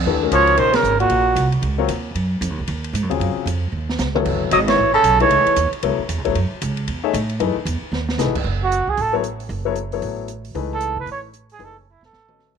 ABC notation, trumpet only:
X:1
M:4/4
L:1/16
Q:"Swing" 1/4=229
K:Gblyd
V:1 name="Trumpet"
z4 d4 c2 B4 G2- | G6 z8 z2 | z16 | z16 |
z4 e2 d4 =A4 d2- | d6 z8 z2 | z16 | z16 |
z2 G4 A2 =A2 z6 | z16 | z2 =A4 _c2 d2 z4 _A2 | =A2 D2 _F2 A8- A z |]